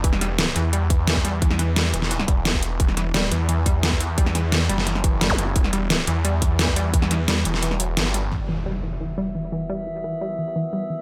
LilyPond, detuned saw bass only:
\new Staff \with { instrumentName = "Detuned saw bass" } { \clef bass \time 4/4 \key e \minor \tempo 4 = 174 e,,4. e,2~ e,8~ | e,4. e,,4 e,,4. | e,,4. e,2~ e,8~ | e,4. fis,,4 fis,,4. |
e,,4. e,2~ e,8~ | e,4. e,,4. g,,4 | r1 | r1 | }